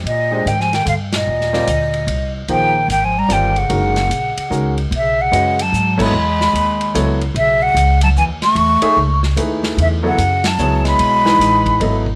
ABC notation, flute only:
X:1
M:3/4
L:1/8
Q:"Swing" 1/4=148
K:Eb
V:1 name="Flute"
e2 (3g a g f e- | e4- e z | g2 (3g a b g _g- | _g4- g z |
[K:Bmix] e f2 a2 b- | b4- b z | e f2 a g c'- | c'3 z3 |
e f2 a2 b- | b4- b z |]